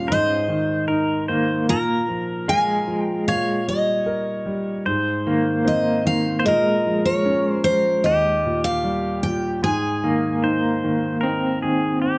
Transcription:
Already playing: grand piano D#2 A#2 G3, clean electric guitar C#4 F4, steel-string acoustic guitar F5
0.08 grand piano G#2, pedal steel guitar C5, steel-string acoustic guitar D#5
0.48 grand piano D#3
0.88 grand piano D#4, pedal steel guitar A#4
1.28 grand piano D#3, clean electric guitar A#3, pedal steel guitar C5
1.69 grand piano A#2, pedal steel guitar A#4, steel-string acoustic guitar A#5
2.09 grand piano F3
2.48 clean electric guitar G#3, grand piano F4, steel-string acoustic guitar G#5
2.87 grand piano F3
3.01 steel-string acoustic guitar G5
3.28 grand piano A#2, pedal steel guitar C#5, steel-string acoustic guitar F5
3.68 grand piano G3, steel-string acoustic guitar D#5
4.06 grand piano A#4
4.46 grand piano G3
4.86 grand piano G#2, pedal steel guitar C5
5.27 grand piano D#3, clean electric guitar A#3
5.65 grand piano C4, steel-string acoustic guitar D#5
6.05 grand piano D#3, steel-string acoustic guitar F5
6.39 pedal steel guitar C5
6.45 grand piano A#2, clean electric guitar G#3, pedal steel guitar A#4, steel-string acoustic guitar D#5
6.87 grand piano F3
7.05 steel-string acoustic guitar C#5
7.25 grand piano C#4
7.49 steel-string acoustic guitar C5
7.64 grand piano F3, steel-string acoustic guitar C5
8.04 grand piano D#2, pedal steel guitar G4, steel-string acoustic guitar D#5
8.46 grand piano A#2
8.64 steel-string acoustic guitar F5
8.84 grand piano G3
9.23 grand piano A#2, steel-string acoustic guitar G5
9.62 grand piano G#2, pedal steel guitar G#4, steel-string acoustic guitar G#5
10.04 grand piano D#3, clean electric guitar A#3
10.43 grand piano D#4, pedal steel guitar C5
10.84 grand piano D#3
11.21 clean electric guitar C4, grand piano D#4, pedal steel guitar A#4
11.62 grand piano D#3, pedal steel guitar G#4
12.02 grand piano C4, pedal steel guitar G4

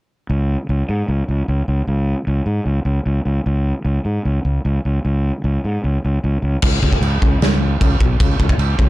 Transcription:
0.30 fingered electric bass C#2
0.69 fingered electric bass C#2
0.89 fingered electric bass G#2
1.08 fingered electric bass C#2
1.28 fingered electric bass C#2
1.48 fingered electric bass C#2
1.68 fingered electric bass C#2
1.87 fingered electric bass C#2
2.27 fingered electric bass C#2
2.46 fingered electric bass G#2
2.65 fingered electric bass C#2
2.85 fingered electric bass C#2
3.06 fingered electric bass C#2
3.25 fingered electric bass C#2
3.46 fingered electric bass C#2
3.85 fingered electric bass C#2
4.05 fingered electric bass G#2
4.25 fingered electric bass C#2
4.45 fingered electric bass C#2
4.65 fingered electric bass C#2
4.85 fingered electric bass C#2
5.05 fingered electric bass C#2
5.44 fingered electric bass C#2
5.64 fingered electric bass G#2
5.84 fingered electric bass C#2
6.05 fingered electric bass C#2
6.24 fingered electric bass C#2
6.42 fingered electric bass C#2
6.62 fingered electric bass C#2, kick, crash, china
6.82 fingered electric bass C#2, kick
6.93 kick
7.00 fingered electric bass C#2, china
7.22 fingered electric bass C#2, kick
7.41 fingered electric bass C#2, snare, china
7.80 fingered electric bass C#2, kick, china
8.00 fingered electric bass B1, kick
8.20 fingered electric bass C#2, kick, china
8.39 fingered electric bass C#2, kick
8.49 kick
8.58 fingered electric bass C#2, china
8.78 fingered electric bass C#2, kick

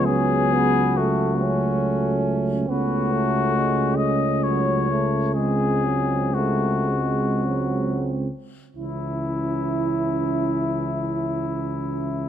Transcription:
Already playing: tuba C#2, french horn section B3
0.05 euphonium F#3, trombone C#4, cornet G#4
0.53 trombone B3
0.97 french horn section A3, trombone A3, cornet F#4
1.43 trombone C#4
2.69 tuba C#2, euphonium A3, trombone B3, french horn section C#4, cornet F#4
3.13 trombone A3
3.55 trombone G#3
3.96 cornet D#5
4.43 trombone F#3, cornet C#5
4.91 trombone A3
5.35 euphonium G#3, trombone G#3, french horn section C4, cornet G#4
5.84 trombone F#3
6.34 trombone A3, cornet F#4
6.89 trombone G#3
7.47 trombone F#3
8.76 tuba C#2, trombone E3, euphonium C#4, cornet E4, french horn section E4

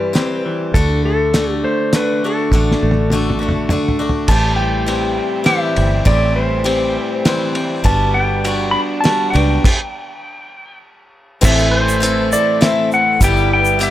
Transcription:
Already playing: fingered electric bass G2, steel-string acoustic guitar E3 G3 C4 G4, clean electric guitar G3, electric slide guitar B4
0.13 steel-string acoustic guitar E3 G3 C4 G4, snare, closed hi-hat
0.45 clean electric guitar E3
0.74 fingered electric bass D2, steel-string acoustic guitar D3 A3 D4 F#4, electric slide guitar A4, kick, closed hi-hat
1.05 clean electric guitar A3, electric slide guitar A4
1.34 steel-string acoustic guitar D3 A3 D4 F#4, snare, closed hi-hat
1.51 electric slide guitar G4
1.64 clean electric guitar A3, electric slide guitar C5
1.93 steel-string acoustic guitar D3 A3 D4 F#4, electric slide guitar B4, snare, closed hi-hat
2.23 clean electric guitar D3, steel-string acoustic guitar A3 D4 F#4, electric slide guitar A4
2.51 fingered electric bass A1, steel-string acoustic guitar D3 A3 D4 F#4, kick, snare
2.72 snare
2.83 fingered electric bass A1, clean electric guitar A3
2.91 high tom
3.10 steel-string acoustic guitar D3 A3 D4, high tom
3.14 steel-string acoustic guitar F#4
3.30 mid tom
3.39 steel-string acoustic guitar A3 D4 F#4
3.49 mid tom
3.69 steel-string acoustic guitar D3 A3 D4 F#4, mid tom
3.88 floor tom
3.99 clean electric guitar D3, steel-string acoustic guitar A3 D4 F#4
4.09 floor tom
4.28 fingered electric bass A1, steel-string acoustic guitar A2 E3 G3 C4 G4, string section A3 C4 E4 G4, electric slide guitar A5, kick, crash
4.56 clean electric guitar G3, electric slide guitar G5
4.86 steel-string acoustic guitar E3 G3 C4 G4, ride
5.18 clean electric guitar C4
5.44 steel-string acoustic guitar E3 G3 C4 G4, electric slide guitar E5, snare, ride
5.48 clean electric guitar E3
5.76 fingered electric bass G1, clean electric guitar C4, ride
6.05 fingered electric bass A1, steel-string acoustic guitar A2 E3 G3 C4 G4, electric slide guitar D5, kick, ride
6.36 clean electric guitar G3, electric slide guitar C5
6.64 steel-string acoustic guitar E3 G3 C4 G4, ride
6.95 clean electric guitar C4
7.25 steel-string acoustic guitar E3 G3 C4 G4, snare, ride
7.55 clean electric guitar C4, ride
7.84 fingered electric bass G1, steel-string acoustic guitar G3 B3 D4 F#4, string section G3 B3 D4, electric slide guitar A5, kick, ride
8.14 clean electric guitar B3, electric slide guitar G5
8.44 steel-string acoustic guitar G3 B3 D4 F#4, ride
8.71 clean electric guitar D4, electric slide guitar B5
9.01 steel-string acoustic guitar G3 B3 D4, electric slide guitar A5
9.05 steel-string acoustic guitar F#4, snare, ride
9.30 steel-string acoustic guitar F#4, electric slide guitar G5
9.35 fingered electric bass C#2, steel-string acoustic guitar B3 D4, ride
9.64 kick, crash
11.41 fingered electric bass A1, steel-string acoustic guitar A2 E3 C4 E4 A4, string section A3 C4 E4 A4, electric slide guitar E5, kick, crash, shaker
11.58 shaker
11.71 electric slide guitar C5
11.89 shaker
12.00 steel-string acoustic guitar E3 C4 E4 A4, closed hi-hat
12.32 steel-string acoustic guitar C4 E4 A4, electric slide guitar D5, shaker
12.61 steel-string acoustic guitar E3 C4 E4 A4, electric slide guitar E5, snare, closed hi-hat
12.92 electric slide guitar F#5, shaker
13.20 fingered electric bass G1, steel-string acoustic guitar G3 B3 E4 G4, string section B3 E4 G4 B4, electric slide guitar G5, kick, closed hi-hat, shaker
13.36 shaker
13.53 electric slide guitar G5
13.65 shaker
13.79 steel-string acoustic guitar G3 B3 E4 G4, closed hi-hat
13.83 electric slide guitar E5

